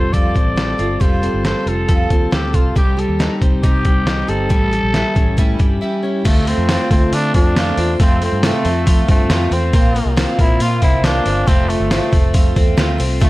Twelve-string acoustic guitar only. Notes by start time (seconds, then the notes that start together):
Already playing: C4 F4 A4
0.13 F3 G3 C4 F4 A4
0.34 C4 F4 A4
0.56 G3 C4 F4 A4
0.78 C4 F4 A4
1.00 F3 G3 C4 F4 A4
1.22 C4 F4 A4
1.44 G3 C4 F4 A4
1.66 C4 F4 A4
1.88 F3 G3 C4 F4 A4
2.10 C4 F4 A4
2.31 G3 C4 F4 A4
2.53 C4 F4 A4
2.75 C3 D#3 G3 C4 G4
2.97 G3 C4 G4
3.19 D#3 G3 C4 G4
3.41 G3 C4 G4
3.63 C3 D#3 G3 C4 G4
3.85 G3 C4 G4
4.06 D#3 G3 C4 G4
4.28 G3 C4 G4
4.49 A2 E3 G3 C#4 G4
4.71 G3 C#4 G4
4.94 E3 G3 C#4 G4
5.15 G3 C#4 G4
5.37 A2 E3 G3 C#4 G4
5.59 G3 C#4 G4
5.81 E3 G3 C#4 G4
6.03 G3 C#4 G4
6.25 D3 A3 C4 F4
6.47 A3 C4 F4
6.69 D3 A3 C4 F4
6.90 A3 C4 F4
7.12 D3 A3 C4 F4
7.34 A3 C4 F4
7.56 D3 A3 C4 F4
7.78 A3 C4 F4
8.00 F2 C3 F3 A3 C4
8.21 F3 A3 C4
8.44 F2 C3 F3 A3 C4
8.65 F3 A3 C4
8.86 C3 F3 A3 C4
9.08 F3 A3 C4
9.30 F2 C3 F3 A3 C4
9.51 F3 A3 C4
9.73 A#2 F3 A#3 C4
9.95 F3 A#3 C4
10.16 A#2 F3 A#3 C4
10.39 F3 A#3 C4
10.59 A#2 F3 A#3 C4
10.82 F3 A#3 C4
11.04 A#2 F3 A#3 C4
11.25 F3 A#3 C4
11.47 F2 C3 F3 A3 C4
11.69 F3 A3 C4
11.91 F2 C3 F3 A3 C4
12.12 F3 A3 C4
12.33 C3 F3 A3 C4
12.56 F3 A3 C4
12.77 F2 C3 F3 A3 C4
12.98 F3 A3 C4
13.20 D3 A3 C4 F4